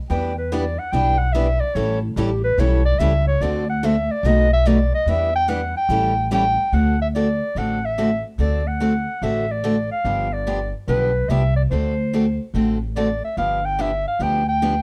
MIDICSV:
0, 0, Header, 1, 5, 480
1, 0, Start_track
1, 0, Tempo, 414651
1, 110, Time_signature, 4, 2, 24, 8
1, 17157, End_track
2, 0, Start_track
2, 0, Title_t, "Clarinet"
2, 0, Program_c, 0, 71
2, 120, Note_on_c, 0, 79, 86
2, 403, Note_off_c, 0, 79, 0
2, 441, Note_on_c, 0, 71, 72
2, 613, Note_on_c, 0, 74, 86
2, 630, Note_off_c, 0, 71, 0
2, 911, Note_on_c, 0, 78, 102
2, 929, Note_off_c, 0, 74, 0
2, 1070, Note_on_c, 0, 79, 118
2, 1088, Note_off_c, 0, 78, 0
2, 1371, Note_on_c, 0, 78, 107
2, 1388, Note_off_c, 0, 79, 0
2, 1537, Note_on_c, 0, 76, 100
2, 1554, Note_off_c, 0, 78, 0
2, 1855, Note_on_c, 0, 74, 96
2, 1873, Note_off_c, 0, 76, 0
2, 2026, Note_on_c, 0, 73, 86
2, 2044, Note_off_c, 0, 74, 0
2, 2330, Note_off_c, 0, 73, 0
2, 2336, Note_on_c, 0, 64, 51
2, 2508, Note_on_c, 0, 67, 76
2, 2522, Note_off_c, 0, 64, 0
2, 2818, Note_off_c, 0, 67, 0
2, 2824, Note_on_c, 0, 71, 100
2, 3008, Note_on_c, 0, 73, 89
2, 3026, Note_off_c, 0, 71, 0
2, 3294, Note_off_c, 0, 73, 0
2, 3301, Note_on_c, 0, 74, 106
2, 3465, Note_on_c, 0, 76, 101
2, 3482, Note_off_c, 0, 74, 0
2, 3776, Note_off_c, 0, 76, 0
2, 3793, Note_on_c, 0, 73, 100
2, 3959, Note_on_c, 0, 74, 87
2, 3977, Note_off_c, 0, 73, 0
2, 4263, Note_off_c, 0, 74, 0
2, 4278, Note_on_c, 0, 78, 103
2, 4454, Note_on_c, 0, 76, 91
2, 4472, Note_off_c, 0, 78, 0
2, 4763, Note_on_c, 0, 74, 101
2, 4780, Note_off_c, 0, 76, 0
2, 4943, Note_on_c, 0, 75, 108
2, 4961, Note_off_c, 0, 74, 0
2, 5235, Note_off_c, 0, 75, 0
2, 5245, Note_on_c, 0, 76, 115
2, 5409, Note_on_c, 0, 74, 98
2, 5426, Note_off_c, 0, 76, 0
2, 5707, Note_off_c, 0, 74, 0
2, 5725, Note_on_c, 0, 75, 106
2, 5903, Note_on_c, 0, 76, 97
2, 5921, Note_off_c, 0, 75, 0
2, 6194, Note_off_c, 0, 76, 0
2, 6201, Note_on_c, 0, 79, 125
2, 6356, Note_on_c, 0, 78, 103
2, 6374, Note_off_c, 0, 79, 0
2, 6661, Note_off_c, 0, 78, 0
2, 6679, Note_on_c, 0, 79, 107
2, 7273, Note_off_c, 0, 79, 0
2, 7335, Note_on_c, 0, 79, 118
2, 7804, Note_on_c, 0, 78, 100
2, 7821, Note_off_c, 0, 79, 0
2, 8104, Note_off_c, 0, 78, 0
2, 8124, Note_on_c, 0, 76, 88
2, 8195, Note_off_c, 0, 76, 0
2, 8283, Note_on_c, 0, 74, 90
2, 8775, Note_on_c, 0, 78, 95
2, 8793, Note_off_c, 0, 74, 0
2, 9088, Note_on_c, 0, 76, 104
2, 9105, Note_off_c, 0, 78, 0
2, 9535, Note_off_c, 0, 76, 0
2, 9724, Note_on_c, 0, 74, 89
2, 10040, Note_on_c, 0, 78, 93
2, 10058, Note_off_c, 0, 74, 0
2, 10687, Note_on_c, 0, 76, 82
2, 10705, Note_off_c, 0, 78, 0
2, 11015, Note_on_c, 0, 74, 88
2, 11032, Note_off_c, 0, 76, 0
2, 11472, Note_off_c, 0, 74, 0
2, 11479, Note_on_c, 0, 77, 86
2, 11959, Note_on_c, 0, 74, 80
2, 11977, Note_off_c, 0, 77, 0
2, 12429, Note_off_c, 0, 74, 0
2, 12605, Note_on_c, 0, 71, 93
2, 13076, Note_on_c, 0, 76, 90
2, 13093, Note_off_c, 0, 71, 0
2, 13378, Note_off_c, 0, 76, 0
2, 13385, Note_on_c, 0, 74, 78
2, 13460, Note_off_c, 0, 74, 0
2, 13554, Note_on_c, 0, 72, 85
2, 14467, Note_off_c, 0, 72, 0
2, 15010, Note_on_c, 0, 74, 91
2, 15290, Note_off_c, 0, 74, 0
2, 15333, Note_on_c, 0, 76, 78
2, 15477, Note_off_c, 0, 76, 0
2, 15491, Note_on_c, 0, 77, 93
2, 15804, Note_on_c, 0, 79, 93
2, 15822, Note_off_c, 0, 77, 0
2, 15989, Note_on_c, 0, 76, 89
2, 16006, Note_off_c, 0, 79, 0
2, 16281, Note_off_c, 0, 76, 0
2, 16295, Note_on_c, 0, 77, 96
2, 16466, Note_on_c, 0, 79, 110
2, 16484, Note_off_c, 0, 77, 0
2, 16760, Note_off_c, 0, 79, 0
2, 16768, Note_on_c, 0, 79, 99
2, 17157, Note_off_c, 0, 79, 0
2, 17157, End_track
3, 0, Start_track
3, 0, Title_t, "Steel-string acoustic guitar"
3, 0, Program_c, 1, 25
3, 124, Note_on_c, 1, 55, 61
3, 127, Note_on_c, 1, 64, 69
3, 132, Note_on_c, 1, 71, 62
3, 371, Note_off_c, 1, 55, 0
3, 373, Note_off_c, 1, 64, 0
3, 375, Note_off_c, 1, 71, 0
3, 607, Note_on_c, 1, 55, 78
3, 612, Note_on_c, 1, 64, 83
3, 614, Note_on_c, 1, 71, 80
3, 733, Note_off_c, 1, 55, 0
3, 735, Note_off_c, 1, 64, 0
3, 737, Note_off_c, 1, 71, 0
3, 1084, Note_on_c, 1, 55, 70
3, 1093, Note_on_c, 1, 64, 77
3, 1093, Note_on_c, 1, 71, 78
3, 1331, Note_off_c, 1, 55, 0
3, 1335, Note_off_c, 1, 64, 0
3, 1336, Note_off_c, 1, 71, 0
3, 1558, Note_on_c, 1, 55, 81
3, 1562, Note_on_c, 1, 64, 81
3, 1569, Note_on_c, 1, 71, 83
3, 1688, Note_off_c, 1, 55, 0
3, 1690, Note_off_c, 1, 64, 0
3, 1694, Note_off_c, 1, 71, 0
3, 4933, Note_on_c, 1, 71, 94
3, 5174, Note_off_c, 1, 71, 0
3, 5405, Note_on_c, 1, 71, 94
3, 5530, Note_off_c, 1, 71, 0
3, 5874, Note_on_c, 1, 55, 68
3, 5881, Note_on_c, 1, 64, 65
3, 5887, Note_on_c, 1, 71, 71
3, 6125, Note_off_c, 1, 55, 0
3, 6128, Note_off_c, 1, 64, 0
3, 6131, Note_off_c, 1, 71, 0
3, 6347, Note_on_c, 1, 55, 78
3, 6352, Note_on_c, 1, 64, 86
3, 6353, Note_on_c, 1, 71, 97
3, 6481, Note_off_c, 1, 55, 0
3, 6483, Note_off_c, 1, 64, 0
3, 6484, Note_off_c, 1, 71, 0
3, 17157, End_track
4, 0, Start_track
4, 0, Title_t, "Steel-string acoustic guitar"
4, 0, Program_c, 2, 25
4, 112, Note_on_c, 2, 52, 63
4, 119, Note_on_c, 2, 59, 67
4, 124, Note_on_c, 2, 62, 63
4, 128, Note_on_c, 2, 67, 74
4, 365, Note_off_c, 2, 52, 0
4, 368, Note_off_c, 2, 59, 0
4, 371, Note_off_c, 2, 62, 0
4, 373, Note_off_c, 2, 67, 0
4, 601, Note_on_c, 2, 52, 100
4, 604, Note_on_c, 2, 59, 101
4, 606, Note_on_c, 2, 62, 86
4, 614, Note_on_c, 2, 67, 96
4, 730, Note_off_c, 2, 52, 0
4, 731, Note_off_c, 2, 59, 0
4, 733, Note_off_c, 2, 62, 0
4, 736, Note_off_c, 2, 67, 0
4, 1076, Note_on_c, 2, 52, 66
4, 1082, Note_on_c, 2, 59, 74
4, 1089, Note_on_c, 2, 62, 80
4, 1094, Note_on_c, 2, 67, 73
4, 1327, Note_off_c, 2, 52, 0
4, 1330, Note_off_c, 2, 59, 0
4, 1333, Note_off_c, 2, 62, 0
4, 1336, Note_off_c, 2, 67, 0
4, 1559, Note_on_c, 2, 52, 88
4, 1561, Note_on_c, 2, 59, 97
4, 1569, Note_on_c, 2, 62, 102
4, 1570, Note_on_c, 2, 67, 95
4, 1689, Note_off_c, 2, 52, 0
4, 1690, Note_off_c, 2, 59, 0
4, 1694, Note_off_c, 2, 62, 0
4, 1694, Note_off_c, 2, 67, 0
4, 2033, Note_on_c, 2, 52, 57
4, 2034, Note_on_c, 2, 55, 69
4, 2042, Note_on_c, 2, 64, 63
4, 2042, Note_on_c, 2, 69, 73
4, 2043, Note_on_c, 2, 61, 75
4, 2285, Note_off_c, 2, 52, 0
4, 2286, Note_off_c, 2, 55, 0
4, 2290, Note_off_c, 2, 61, 0
4, 2290, Note_off_c, 2, 64, 0
4, 2290, Note_off_c, 2, 69, 0
4, 2513, Note_on_c, 2, 52, 90
4, 2519, Note_on_c, 2, 55, 88
4, 2523, Note_on_c, 2, 61, 101
4, 2524, Note_on_c, 2, 64, 90
4, 2532, Note_on_c, 2, 69, 100
4, 2646, Note_off_c, 2, 52, 0
4, 2649, Note_off_c, 2, 55, 0
4, 2651, Note_off_c, 2, 61, 0
4, 2651, Note_off_c, 2, 64, 0
4, 2655, Note_off_c, 2, 69, 0
4, 2991, Note_on_c, 2, 52, 75
4, 2998, Note_on_c, 2, 55, 76
4, 3003, Note_on_c, 2, 61, 77
4, 3007, Note_on_c, 2, 69, 77
4, 3009, Note_on_c, 2, 64, 73
4, 3244, Note_off_c, 2, 52, 0
4, 3248, Note_off_c, 2, 55, 0
4, 3250, Note_off_c, 2, 61, 0
4, 3252, Note_off_c, 2, 69, 0
4, 3253, Note_off_c, 2, 64, 0
4, 3475, Note_on_c, 2, 52, 88
4, 3478, Note_on_c, 2, 55, 104
4, 3481, Note_on_c, 2, 61, 96
4, 3483, Note_on_c, 2, 64, 108
4, 3488, Note_on_c, 2, 69, 107
4, 3606, Note_off_c, 2, 52, 0
4, 3608, Note_off_c, 2, 55, 0
4, 3609, Note_off_c, 2, 61, 0
4, 3610, Note_off_c, 2, 64, 0
4, 3613, Note_off_c, 2, 69, 0
4, 3953, Note_on_c, 2, 50, 67
4, 3960, Note_on_c, 2, 57, 61
4, 3963, Note_on_c, 2, 60, 66
4, 3964, Note_on_c, 2, 66, 73
4, 3972, Note_on_c, 2, 69, 68
4, 4205, Note_off_c, 2, 50, 0
4, 4208, Note_off_c, 2, 57, 0
4, 4209, Note_off_c, 2, 60, 0
4, 4210, Note_off_c, 2, 66, 0
4, 4214, Note_off_c, 2, 69, 0
4, 4435, Note_on_c, 2, 50, 90
4, 4438, Note_on_c, 2, 57, 91
4, 4441, Note_on_c, 2, 60, 99
4, 4447, Note_on_c, 2, 66, 101
4, 4451, Note_on_c, 2, 69, 93
4, 4566, Note_off_c, 2, 50, 0
4, 4567, Note_off_c, 2, 57, 0
4, 4569, Note_off_c, 2, 60, 0
4, 4572, Note_off_c, 2, 66, 0
4, 4574, Note_off_c, 2, 69, 0
4, 4914, Note_on_c, 2, 47, 67
4, 4921, Note_on_c, 2, 54, 77
4, 4923, Note_on_c, 2, 57, 77
4, 4928, Note_on_c, 2, 63, 70
4, 4930, Note_on_c, 2, 66, 73
4, 5165, Note_off_c, 2, 47, 0
4, 5168, Note_off_c, 2, 54, 0
4, 5169, Note_off_c, 2, 57, 0
4, 5172, Note_off_c, 2, 63, 0
4, 5173, Note_off_c, 2, 66, 0
4, 5389, Note_on_c, 2, 47, 95
4, 5394, Note_on_c, 2, 54, 100
4, 5401, Note_on_c, 2, 57, 96
4, 5403, Note_on_c, 2, 63, 110
4, 5408, Note_on_c, 2, 66, 101
4, 5523, Note_off_c, 2, 47, 0
4, 5525, Note_off_c, 2, 54, 0
4, 5529, Note_off_c, 2, 57, 0
4, 5530, Note_off_c, 2, 63, 0
4, 5532, Note_off_c, 2, 66, 0
4, 5877, Note_on_c, 2, 52, 61
4, 5880, Note_on_c, 2, 59, 67
4, 5887, Note_on_c, 2, 62, 67
4, 5891, Note_on_c, 2, 67, 68
4, 6126, Note_off_c, 2, 52, 0
4, 6128, Note_off_c, 2, 59, 0
4, 6131, Note_off_c, 2, 62, 0
4, 6133, Note_off_c, 2, 67, 0
4, 6343, Note_on_c, 2, 52, 86
4, 6348, Note_on_c, 2, 59, 86
4, 6353, Note_on_c, 2, 62, 100
4, 6363, Note_on_c, 2, 67, 101
4, 6479, Note_off_c, 2, 52, 0
4, 6482, Note_off_c, 2, 59, 0
4, 6485, Note_off_c, 2, 62, 0
4, 6490, Note_off_c, 2, 67, 0
4, 6828, Note_on_c, 2, 52, 75
4, 6829, Note_on_c, 2, 55, 73
4, 6840, Note_on_c, 2, 61, 80
4, 6841, Note_on_c, 2, 64, 85
4, 6844, Note_on_c, 2, 69, 78
4, 7081, Note_off_c, 2, 52, 0
4, 7082, Note_off_c, 2, 55, 0
4, 7087, Note_off_c, 2, 61, 0
4, 7088, Note_off_c, 2, 64, 0
4, 7089, Note_off_c, 2, 69, 0
4, 7310, Note_on_c, 2, 52, 96
4, 7311, Note_on_c, 2, 55, 100
4, 7317, Note_on_c, 2, 61, 103
4, 7319, Note_on_c, 2, 64, 104
4, 7324, Note_on_c, 2, 69, 109
4, 7443, Note_off_c, 2, 52, 0
4, 7443, Note_off_c, 2, 55, 0
4, 7446, Note_off_c, 2, 61, 0
4, 7447, Note_off_c, 2, 64, 0
4, 7449, Note_off_c, 2, 69, 0
4, 7784, Note_on_c, 2, 50, 50
4, 7791, Note_on_c, 2, 57, 58
4, 7793, Note_on_c, 2, 60, 55
4, 7799, Note_on_c, 2, 66, 54
4, 7800, Note_on_c, 2, 69, 54
4, 8039, Note_off_c, 2, 50, 0
4, 8043, Note_off_c, 2, 57, 0
4, 8044, Note_off_c, 2, 60, 0
4, 8047, Note_off_c, 2, 66, 0
4, 8047, Note_off_c, 2, 69, 0
4, 8275, Note_on_c, 2, 50, 75
4, 8284, Note_on_c, 2, 57, 86
4, 8287, Note_on_c, 2, 60, 73
4, 8287, Note_on_c, 2, 66, 90
4, 8290, Note_on_c, 2, 69, 89
4, 8405, Note_off_c, 2, 50, 0
4, 8410, Note_off_c, 2, 57, 0
4, 8411, Note_off_c, 2, 60, 0
4, 8411, Note_off_c, 2, 66, 0
4, 8413, Note_off_c, 2, 69, 0
4, 8755, Note_on_c, 2, 50, 64
4, 8762, Note_on_c, 2, 57, 69
4, 8767, Note_on_c, 2, 60, 70
4, 8768, Note_on_c, 2, 66, 70
4, 8770, Note_on_c, 2, 69, 70
4, 9005, Note_off_c, 2, 50, 0
4, 9008, Note_off_c, 2, 57, 0
4, 9011, Note_off_c, 2, 60, 0
4, 9012, Note_off_c, 2, 66, 0
4, 9012, Note_off_c, 2, 69, 0
4, 9237, Note_on_c, 2, 50, 80
4, 9241, Note_on_c, 2, 60, 88
4, 9242, Note_on_c, 2, 57, 77
4, 9246, Note_on_c, 2, 66, 93
4, 9250, Note_on_c, 2, 69, 96
4, 9366, Note_off_c, 2, 50, 0
4, 9368, Note_off_c, 2, 60, 0
4, 9369, Note_off_c, 2, 57, 0
4, 9371, Note_off_c, 2, 66, 0
4, 9373, Note_off_c, 2, 69, 0
4, 9709, Note_on_c, 2, 50, 58
4, 9715, Note_on_c, 2, 57, 55
4, 9722, Note_on_c, 2, 60, 55
4, 9722, Note_on_c, 2, 66, 57
4, 9724, Note_on_c, 2, 69, 66
4, 9962, Note_off_c, 2, 50, 0
4, 9965, Note_off_c, 2, 57, 0
4, 9969, Note_off_c, 2, 60, 0
4, 9969, Note_off_c, 2, 66, 0
4, 9970, Note_off_c, 2, 69, 0
4, 10191, Note_on_c, 2, 50, 76
4, 10196, Note_on_c, 2, 57, 91
4, 10202, Note_on_c, 2, 66, 84
4, 10203, Note_on_c, 2, 60, 87
4, 10206, Note_on_c, 2, 69, 91
4, 10323, Note_off_c, 2, 50, 0
4, 10326, Note_off_c, 2, 57, 0
4, 10329, Note_off_c, 2, 66, 0
4, 10330, Note_off_c, 2, 60, 0
4, 10331, Note_off_c, 2, 69, 0
4, 10679, Note_on_c, 2, 50, 64
4, 10683, Note_on_c, 2, 57, 69
4, 10689, Note_on_c, 2, 60, 67
4, 10691, Note_on_c, 2, 66, 79
4, 10692, Note_on_c, 2, 69, 73
4, 10928, Note_off_c, 2, 50, 0
4, 10930, Note_off_c, 2, 57, 0
4, 10932, Note_off_c, 2, 60, 0
4, 10934, Note_off_c, 2, 66, 0
4, 10934, Note_off_c, 2, 69, 0
4, 11155, Note_on_c, 2, 50, 82
4, 11157, Note_on_c, 2, 57, 99
4, 11158, Note_on_c, 2, 60, 85
4, 11166, Note_on_c, 2, 66, 93
4, 11167, Note_on_c, 2, 69, 100
4, 11286, Note_off_c, 2, 50, 0
4, 11287, Note_off_c, 2, 57, 0
4, 11288, Note_off_c, 2, 60, 0
4, 11291, Note_off_c, 2, 66, 0
4, 11292, Note_off_c, 2, 69, 0
4, 11636, Note_on_c, 2, 50, 54
4, 11636, Note_on_c, 2, 53, 59
4, 11644, Note_on_c, 2, 59, 61
4, 11647, Note_on_c, 2, 62, 57
4, 11648, Note_on_c, 2, 67, 65
4, 11886, Note_off_c, 2, 53, 0
4, 11887, Note_off_c, 2, 50, 0
4, 11891, Note_off_c, 2, 59, 0
4, 11892, Note_off_c, 2, 62, 0
4, 11893, Note_off_c, 2, 67, 0
4, 12117, Note_on_c, 2, 50, 84
4, 12119, Note_on_c, 2, 53, 86
4, 12122, Note_on_c, 2, 59, 87
4, 12126, Note_on_c, 2, 62, 92
4, 12127, Note_on_c, 2, 67, 99
4, 12247, Note_off_c, 2, 50, 0
4, 12249, Note_off_c, 2, 53, 0
4, 12250, Note_off_c, 2, 59, 0
4, 12252, Note_off_c, 2, 62, 0
4, 12253, Note_off_c, 2, 67, 0
4, 12596, Note_on_c, 2, 50, 68
4, 12605, Note_on_c, 2, 53, 71
4, 12608, Note_on_c, 2, 59, 73
4, 12613, Note_on_c, 2, 62, 65
4, 12616, Note_on_c, 2, 67, 76
4, 12847, Note_off_c, 2, 50, 0
4, 12852, Note_off_c, 2, 53, 0
4, 12853, Note_off_c, 2, 59, 0
4, 12855, Note_off_c, 2, 62, 0
4, 12857, Note_off_c, 2, 67, 0
4, 13077, Note_on_c, 2, 50, 85
4, 13083, Note_on_c, 2, 53, 91
4, 13087, Note_on_c, 2, 59, 97
4, 13092, Note_on_c, 2, 62, 88
4, 13095, Note_on_c, 2, 67, 95
4, 13208, Note_off_c, 2, 50, 0
4, 13211, Note_off_c, 2, 53, 0
4, 13213, Note_off_c, 2, 59, 0
4, 13216, Note_off_c, 2, 62, 0
4, 13217, Note_off_c, 2, 67, 0
4, 13562, Note_on_c, 2, 50, 65
4, 13566, Note_on_c, 2, 57, 54
4, 13573, Note_on_c, 2, 66, 59
4, 13575, Note_on_c, 2, 60, 51
4, 13576, Note_on_c, 2, 69, 70
4, 13811, Note_off_c, 2, 50, 0
4, 13813, Note_off_c, 2, 57, 0
4, 13816, Note_off_c, 2, 66, 0
4, 13817, Note_off_c, 2, 60, 0
4, 13818, Note_off_c, 2, 69, 0
4, 14046, Note_on_c, 2, 50, 89
4, 14051, Note_on_c, 2, 57, 77
4, 14054, Note_on_c, 2, 60, 79
4, 14057, Note_on_c, 2, 66, 92
4, 14062, Note_on_c, 2, 69, 89
4, 14173, Note_off_c, 2, 50, 0
4, 14175, Note_off_c, 2, 57, 0
4, 14177, Note_off_c, 2, 60, 0
4, 14179, Note_off_c, 2, 66, 0
4, 14181, Note_off_c, 2, 69, 0
4, 14523, Note_on_c, 2, 50, 67
4, 14529, Note_on_c, 2, 57, 60
4, 14536, Note_on_c, 2, 60, 74
4, 14541, Note_on_c, 2, 66, 68
4, 14544, Note_on_c, 2, 69, 71
4, 14772, Note_off_c, 2, 50, 0
4, 14775, Note_off_c, 2, 57, 0
4, 14778, Note_off_c, 2, 60, 0
4, 14781, Note_off_c, 2, 66, 0
4, 14782, Note_off_c, 2, 69, 0
4, 15004, Note_on_c, 2, 50, 81
4, 15009, Note_on_c, 2, 57, 88
4, 15013, Note_on_c, 2, 60, 98
4, 15014, Note_on_c, 2, 66, 95
4, 15016, Note_on_c, 2, 69, 88
4, 15133, Note_off_c, 2, 50, 0
4, 15135, Note_off_c, 2, 57, 0
4, 15137, Note_off_c, 2, 60, 0
4, 15138, Note_off_c, 2, 66, 0
4, 15139, Note_off_c, 2, 69, 0
4, 15479, Note_on_c, 2, 50, 54
4, 15483, Note_on_c, 2, 53, 56
4, 15488, Note_on_c, 2, 59, 62
4, 15489, Note_on_c, 2, 62, 59
4, 15492, Note_on_c, 2, 67, 57
4, 15730, Note_off_c, 2, 50, 0
4, 15732, Note_off_c, 2, 53, 0
4, 15735, Note_off_c, 2, 59, 0
4, 15735, Note_off_c, 2, 62, 0
4, 15737, Note_off_c, 2, 67, 0
4, 15959, Note_on_c, 2, 50, 92
4, 15961, Note_on_c, 2, 53, 83
4, 15963, Note_on_c, 2, 59, 82
4, 15971, Note_on_c, 2, 62, 87
4, 15973, Note_on_c, 2, 67, 89
4, 16091, Note_off_c, 2, 50, 0
4, 16092, Note_off_c, 2, 53, 0
4, 16093, Note_off_c, 2, 59, 0
4, 16097, Note_off_c, 2, 62, 0
4, 16098, Note_off_c, 2, 67, 0
4, 16437, Note_on_c, 2, 50, 66
4, 16440, Note_on_c, 2, 53, 59
4, 16444, Note_on_c, 2, 59, 68
4, 16445, Note_on_c, 2, 62, 64
4, 16446, Note_on_c, 2, 67, 71
4, 16690, Note_off_c, 2, 50, 0
4, 16691, Note_off_c, 2, 53, 0
4, 16693, Note_off_c, 2, 59, 0
4, 16694, Note_off_c, 2, 62, 0
4, 16695, Note_off_c, 2, 67, 0
4, 16923, Note_on_c, 2, 50, 82
4, 16927, Note_on_c, 2, 53, 90
4, 16930, Note_on_c, 2, 59, 99
4, 16934, Note_on_c, 2, 62, 90
4, 16935, Note_on_c, 2, 67, 104
4, 17053, Note_off_c, 2, 50, 0
4, 17055, Note_off_c, 2, 53, 0
4, 17057, Note_off_c, 2, 59, 0
4, 17059, Note_off_c, 2, 62, 0
4, 17059, Note_off_c, 2, 67, 0
4, 17157, End_track
5, 0, Start_track
5, 0, Title_t, "Upright bass"
5, 0, Program_c, 3, 32
5, 114, Note_on_c, 3, 40, 89
5, 880, Note_off_c, 3, 40, 0
5, 1071, Note_on_c, 3, 35, 79
5, 1838, Note_off_c, 3, 35, 0
5, 2027, Note_on_c, 3, 33, 89
5, 2412, Note_off_c, 3, 33, 0
5, 2502, Note_on_c, 3, 33, 87
5, 2913, Note_off_c, 3, 33, 0
5, 2982, Note_on_c, 3, 35, 91
5, 3393, Note_off_c, 3, 35, 0
5, 3466, Note_on_c, 3, 37, 87
5, 3875, Note_off_c, 3, 37, 0
5, 3941, Note_on_c, 3, 38, 85
5, 4711, Note_off_c, 3, 38, 0
5, 4898, Note_on_c, 3, 35, 91
5, 5669, Note_off_c, 3, 35, 0
5, 5855, Note_on_c, 3, 40, 86
5, 6627, Note_off_c, 3, 40, 0
5, 6815, Note_on_c, 3, 33, 94
5, 7587, Note_off_c, 3, 33, 0
5, 7780, Note_on_c, 3, 38, 75
5, 8551, Note_off_c, 3, 38, 0
5, 8741, Note_on_c, 3, 33, 70
5, 9512, Note_off_c, 3, 33, 0
5, 9702, Note_on_c, 3, 38, 75
5, 10473, Note_off_c, 3, 38, 0
5, 10670, Note_on_c, 3, 33, 82
5, 11437, Note_off_c, 3, 33, 0
5, 11628, Note_on_c, 3, 31, 85
5, 12397, Note_off_c, 3, 31, 0
5, 12590, Note_on_c, 3, 35, 83
5, 12998, Note_off_c, 3, 35, 0
5, 13066, Note_on_c, 3, 36, 75
5, 13476, Note_off_c, 3, 36, 0
5, 13552, Note_on_c, 3, 38, 82
5, 14320, Note_off_c, 3, 38, 0
5, 14513, Note_on_c, 3, 33, 74
5, 15281, Note_off_c, 3, 33, 0
5, 15477, Note_on_c, 3, 31, 78
5, 16244, Note_off_c, 3, 31, 0
5, 16431, Note_on_c, 3, 38, 74
5, 17157, Note_off_c, 3, 38, 0
5, 17157, End_track
0, 0, End_of_file